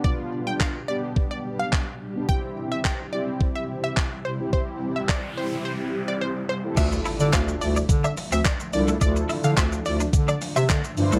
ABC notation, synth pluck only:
X:1
M:4/4
L:1/16
Q:1/4=107
K:Ddor
V:1 name="Synth pluck"
d z2 g f2 d z2 d z f2 z3 | g z2 e g2 d z2 e z e z2 c z | c z2 e d2 c z c z2 d c z c z | e z2 d f2 d z2 e z e z2 d z |
d z2 f e2 d z2 d z e2 z3 |]